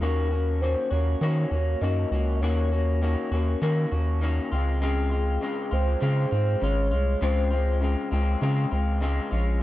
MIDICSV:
0, 0, Header, 1, 4, 480
1, 0, Start_track
1, 0, Key_signature, -5, "major"
1, 0, Tempo, 600000
1, 14, Time_signature, 4, 2, 24, 8
1, 7702, End_track
2, 0, Start_track
2, 0, Title_t, "Soft synth lead"
2, 0, Program_c, 0, 80
2, 13, Note_on_c, 0, 70, 83
2, 491, Note_on_c, 0, 72, 87
2, 503, Note_off_c, 0, 70, 0
2, 726, Note_on_c, 0, 73, 79
2, 738, Note_off_c, 0, 72, 0
2, 961, Note_off_c, 0, 73, 0
2, 966, Note_on_c, 0, 73, 97
2, 1454, Note_on_c, 0, 75, 95
2, 1466, Note_off_c, 0, 73, 0
2, 1894, Note_off_c, 0, 75, 0
2, 1894, Note_on_c, 0, 75, 61
2, 1931, Note_on_c, 0, 73, 91
2, 1943, Note_off_c, 0, 75, 0
2, 2654, Note_off_c, 0, 73, 0
2, 3867, Note_on_c, 0, 68, 87
2, 4587, Note_on_c, 0, 72, 85
2, 4599, Note_off_c, 0, 68, 0
2, 4822, Note_off_c, 0, 72, 0
2, 4826, Note_on_c, 0, 72, 98
2, 5305, Note_on_c, 0, 73, 105
2, 5317, Note_off_c, 0, 72, 0
2, 5790, Note_on_c, 0, 72, 99
2, 5802, Note_off_c, 0, 73, 0
2, 6503, Note_off_c, 0, 72, 0
2, 7702, End_track
3, 0, Start_track
3, 0, Title_t, "Clean electric guitar"
3, 0, Program_c, 1, 27
3, 6, Note_on_c, 1, 51, 59
3, 13, Note_on_c, 1, 58, 67
3, 19, Note_on_c, 1, 61, 74
3, 25, Note_on_c, 1, 66, 72
3, 235, Note_off_c, 1, 66, 0
3, 245, Note_on_c, 1, 66, 48
3, 248, Note_off_c, 1, 61, 0
3, 250, Note_off_c, 1, 51, 0
3, 253, Note_off_c, 1, 58, 0
3, 257, Note_on_c, 1, 61, 44
3, 268, Note_on_c, 1, 58, 39
3, 488, Note_on_c, 1, 51, 47
3, 489, Note_off_c, 1, 58, 0
3, 489, Note_off_c, 1, 66, 0
3, 495, Note_off_c, 1, 61, 0
3, 498, Note_on_c, 1, 58, 51
3, 504, Note_on_c, 1, 61, 52
3, 511, Note_on_c, 1, 66, 54
3, 715, Note_off_c, 1, 66, 0
3, 725, Note_on_c, 1, 66, 46
3, 728, Note_off_c, 1, 61, 0
3, 731, Note_off_c, 1, 51, 0
3, 736, Note_off_c, 1, 58, 0
3, 737, Note_on_c, 1, 61, 42
3, 748, Note_on_c, 1, 58, 37
3, 968, Note_off_c, 1, 58, 0
3, 969, Note_off_c, 1, 66, 0
3, 971, Note_on_c, 1, 51, 62
3, 976, Note_off_c, 1, 61, 0
3, 977, Note_on_c, 1, 58, 71
3, 984, Note_on_c, 1, 61, 78
3, 986, Note_on_c, 1, 66, 79
3, 1200, Note_off_c, 1, 66, 0
3, 1209, Note_off_c, 1, 61, 0
3, 1209, Note_on_c, 1, 66, 43
3, 1212, Note_off_c, 1, 51, 0
3, 1216, Note_off_c, 1, 58, 0
3, 1219, Note_on_c, 1, 61, 41
3, 1232, Note_on_c, 1, 58, 38
3, 1449, Note_off_c, 1, 58, 0
3, 1452, Note_off_c, 1, 66, 0
3, 1452, Note_on_c, 1, 51, 50
3, 1454, Note_off_c, 1, 61, 0
3, 1458, Note_on_c, 1, 58, 55
3, 1464, Note_on_c, 1, 61, 58
3, 1472, Note_on_c, 1, 66, 60
3, 1687, Note_off_c, 1, 66, 0
3, 1693, Note_off_c, 1, 51, 0
3, 1696, Note_off_c, 1, 58, 0
3, 1697, Note_on_c, 1, 66, 51
3, 1699, Note_off_c, 1, 61, 0
3, 1708, Note_on_c, 1, 61, 44
3, 1717, Note_on_c, 1, 58, 40
3, 1934, Note_off_c, 1, 58, 0
3, 1936, Note_off_c, 1, 66, 0
3, 1939, Note_on_c, 1, 51, 63
3, 1941, Note_off_c, 1, 61, 0
3, 1943, Note_on_c, 1, 58, 73
3, 1950, Note_on_c, 1, 61, 73
3, 1953, Note_on_c, 1, 66, 79
3, 2165, Note_off_c, 1, 66, 0
3, 2174, Note_off_c, 1, 61, 0
3, 2175, Note_on_c, 1, 66, 51
3, 2177, Note_off_c, 1, 51, 0
3, 2179, Note_off_c, 1, 58, 0
3, 2184, Note_on_c, 1, 61, 45
3, 2194, Note_on_c, 1, 58, 42
3, 2412, Note_off_c, 1, 58, 0
3, 2413, Note_on_c, 1, 51, 51
3, 2415, Note_off_c, 1, 66, 0
3, 2420, Note_off_c, 1, 61, 0
3, 2421, Note_on_c, 1, 58, 55
3, 2428, Note_on_c, 1, 61, 52
3, 2432, Note_on_c, 1, 66, 55
3, 2644, Note_off_c, 1, 66, 0
3, 2653, Note_on_c, 1, 66, 53
3, 2654, Note_off_c, 1, 51, 0
3, 2656, Note_off_c, 1, 61, 0
3, 2658, Note_off_c, 1, 58, 0
3, 2666, Note_on_c, 1, 61, 50
3, 2674, Note_on_c, 1, 58, 47
3, 2890, Note_off_c, 1, 58, 0
3, 2893, Note_off_c, 1, 61, 0
3, 2894, Note_off_c, 1, 66, 0
3, 2895, Note_on_c, 1, 51, 78
3, 2900, Note_on_c, 1, 58, 78
3, 2902, Note_on_c, 1, 61, 84
3, 2907, Note_on_c, 1, 66, 83
3, 3122, Note_off_c, 1, 66, 0
3, 3131, Note_off_c, 1, 61, 0
3, 3132, Note_on_c, 1, 66, 50
3, 3135, Note_off_c, 1, 51, 0
3, 3138, Note_off_c, 1, 58, 0
3, 3141, Note_on_c, 1, 61, 50
3, 3149, Note_on_c, 1, 58, 43
3, 3370, Note_off_c, 1, 58, 0
3, 3370, Note_on_c, 1, 51, 58
3, 3374, Note_off_c, 1, 66, 0
3, 3378, Note_off_c, 1, 61, 0
3, 3380, Note_on_c, 1, 58, 68
3, 3386, Note_on_c, 1, 61, 69
3, 3394, Note_on_c, 1, 66, 72
3, 3609, Note_off_c, 1, 66, 0
3, 3612, Note_on_c, 1, 65, 55
3, 3613, Note_off_c, 1, 51, 0
3, 3618, Note_off_c, 1, 58, 0
3, 3619, Note_off_c, 1, 61, 0
3, 3622, Note_on_c, 1, 60, 51
3, 3636, Note_on_c, 1, 56, 44
3, 3845, Note_off_c, 1, 56, 0
3, 3851, Note_off_c, 1, 60, 0
3, 3851, Note_on_c, 1, 49, 69
3, 3854, Note_off_c, 1, 65, 0
3, 3855, Note_on_c, 1, 56, 70
3, 3861, Note_on_c, 1, 60, 70
3, 3867, Note_on_c, 1, 65, 80
3, 4080, Note_off_c, 1, 65, 0
3, 4090, Note_on_c, 1, 65, 50
3, 4092, Note_off_c, 1, 60, 0
3, 4093, Note_off_c, 1, 49, 0
3, 4095, Note_off_c, 1, 56, 0
3, 4102, Note_on_c, 1, 60, 42
3, 4111, Note_on_c, 1, 56, 39
3, 4327, Note_off_c, 1, 56, 0
3, 4331, Note_on_c, 1, 49, 53
3, 4333, Note_off_c, 1, 65, 0
3, 4336, Note_off_c, 1, 60, 0
3, 4336, Note_on_c, 1, 56, 56
3, 4345, Note_on_c, 1, 60, 54
3, 4349, Note_on_c, 1, 65, 60
3, 4558, Note_off_c, 1, 65, 0
3, 4567, Note_on_c, 1, 65, 51
3, 4571, Note_off_c, 1, 60, 0
3, 4574, Note_off_c, 1, 49, 0
3, 4576, Note_off_c, 1, 56, 0
3, 4581, Note_on_c, 1, 60, 47
3, 4589, Note_on_c, 1, 56, 41
3, 4804, Note_off_c, 1, 56, 0
3, 4806, Note_on_c, 1, 49, 72
3, 4810, Note_off_c, 1, 60, 0
3, 4812, Note_off_c, 1, 65, 0
3, 4813, Note_on_c, 1, 56, 66
3, 4819, Note_on_c, 1, 60, 71
3, 4822, Note_on_c, 1, 65, 80
3, 5038, Note_off_c, 1, 65, 0
3, 5048, Note_on_c, 1, 65, 46
3, 5050, Note_off_c, 1, 60, 0
3, 5051, Note_off_c, 1, 49, 0
3, 5055, Note_off_c, 1, 56, 0
3, 5059, Note_on_c, 1, 60, 46
3, 5067, Note_on_c, 1, 56, 37
3, 5281, Note_off_c, 1, 56, 0
3, 5284, Note_on_c, 1, 49, 59
3, 5291, Note_on_c, 1, 56, 58
3, 5292, Note_off_c, 1, 65, 0
3, 5298, Note_off_c, 1, 60, 0
3, 5307, Note_on_c, 1, 65, 63
3, 5517, Note_off_c, 1, 65, 0
3, 5527, Note_on_c, 1, 65, 46
3, 5530, Note_off_c, 1, 49, 0
3, 5533, Note_off_c, 1, 56, 0
3, 5546, Note_on_c, 1, 56, 40
3, 5766, Note_off_c, 1, 56, 0
3, 5769, Note_on_c, 1, 49, 61
3, 5771, Note_off_c, 1, 65, 0
3, 5776, Note_on_c, 1, 56, 72
3, 5780, Note_on_c, 1, 60, 78
3, 5782, Note_on_c, 1, 65, 85
3, 5994, Note_off_c, 1, 65, 0
3, 6004, Note_on_c, 1, 65, 50
3, 6006, Note_off_c, 1, 60, 0
3, 6012, Note_off_c, 1, 49, 0
3, 6015, Note_on_c, 1, 60, 48
3, 6016, Note_off_c, 1, 56, 0
3, 6028, Note_on_c, 1, 56, 44
3, 6244, Note_off_c, 1, 56, 0
3, 6244, Note_on_c, 1, 49, 48
3, 6250, Note_off_c, 1, 65, 0
3, 6252, Note_off_c, 1, 60, 0
3, 6254, Note_on_c, 1, 56, 48
3, 6261, Note_on_c, 1, 60, 51
3, 6268, Note_on_c, 1, 65, 52
3, 6478, Note_off_c, 1, 65, 0
3, 6487, Note_on_c, 1, 65, 57
3, 6489, Note_off_c, 1, 60, 0
3, 6490, Note_off_c, 1, 49, 0
3, 6495, Note_off_c, 1, 56, 0
3, 6499, Note_on_c, 1, 60, 52
3, 6508, Note_on_c, 1, 56, 45
3, 6729, Note_off_c, 1, 56, 0
3, 6730, Note_on_c, 1, 49, 73
3, 6731, Note_off_c, 1, 65, 0
3, 6734, Note_off_c, 1, 60, 0
3, 6739, Note_on_c, 1, 56, 72
3, 6743, Note_on_c, 1, 60, 86
3, 6747, Note_on_c, 1, 65, 85
3, 6960, Note_off_c, 1, 65, 0
3, 6970, Note_off_c, 1, 60, 0
3, 6970, Note_on_c, 1, 65, 46
3, 6973, Note_off_c, 1, 49, 0
3, 6977, Note_off_c, 1, 56, 0
3, 6979, Note_on_c, 1, 60, 51
3, 6987, Note_on_c, 1, 56, 38
3, 7207, Note_off_c, 1, 56, 0
3, 7207, Note_on_c, 1, 49, 60
3, 7212, Note_off_c, 1, 65, 0
3, 7213, Note_off_c, 1, 60, 0
3, 7217, Note_on_c, 1, 56, 65
3, 7222, Note_on_c, 1, 60, 61
3, 7228, Note_on_c, 1, 65, 69
3, 7438, Note_off_c, 1, 65, 0
3, 7448, Note_on_c, 1, 65, 51
3, 7451, Note_off_c, 1, 49, 0
3, 7456, Note_off_c, 1, 56, 0
3, 7456, Note_off_c, 1, 60, 0
3, 7459, Note_on_c, 1, 61, 49
3, 7466, Note_on_c, 1, 56, 45
3, 7683, Note_off_c, 1, 56, 0
3, 7689, Note_off_c, 1, 61, 0
3, 7691, Note_off_c, 1, 65, 0
3, 7702, End_track
4, 0, Start_track
4, 0, Title_t, "Analog synth bass"
4, 0, Program_c, 2, 38
4, 11, Note_on_c, 2, 39, 89
4, 605, Note_off_c, 2, 39, 0
4, 732, Note_on_c, 2, 39, 89
4, 925, Note_off_c, 2, 39, 0
4, 970, Note_on_c, 2, 51, 101
4, 1164, Note_off_c, 2, 51, 0
4, 1212, Note_on_c, 2, 39, 80
4, 1405, Note_off_c, 2, 39, 0
4, 1453, Note_on_c, 2, 42, 90
4, 1645, Note_off_c, 2, 42, 0
4, 1691, Note_on_c, 2, 37, 75
4, 1934, Note_on_c, 2, 39, 100
4, 1946, Note_off_c, 2, 37, 0
4, 2528, Note_off_c, 2, 39, 0
4, 2653, Note_on_c, 2, 39, 87
4, 2846, Note_off_c, 2, 39, 0
4, 2895, Note_on_c, 2, 51, 99
4, 3087, Note_off_c, 2, 51, 0
4, 3137, Note_on_c, 2, 39, 83
4, 3521, Note_off_c, 2, 39, 0
4, 3618, Note_on_c, 2, 37, 87
4, 4308, Note_off_c, 2, 37, 0
4, 4578, Note_on_c, 2, 37, 93
4, 4769, Note_off_c, 2, 37, 0
4, 4817, Note_on_c, 2, 49, 95
4, 5008, Note_off_c, 2, 49, 0
4, 5057, Note_on_c, 2, 44, 86
4, 5249, Note_off_c, 2, 44, 0
4, 5297, Note_on_c, 2, 32, 97
4, 5535, Note_on_c, 2, 36, 88
4, 5547, Note_off_c, 2, 32, 0
4, 5727, Note_off_c, 2, 36, 0
4, 5775, Note_on_c, 2, 37, 84
4, 6368, Note_off_c, 2, 37, 0
4, 6496, Note_on_c, 2, 37, 88
4, 6688, Note_off_c, 2, 37, 0
4, 6735, Note_on_c, 2, 49, 100
4, 6927, Note_off_c, 2, 49, 0
4, 6978, Note_on_c, 2, 37, 84
4, 7361, Note_off_c, 2, 37, 0
4, 7457, Note_on_c, 2, 34, 93
4, 7702, Note_off_c, 2, 34, 0
4, 7702, End_track
0, 0, End_of_file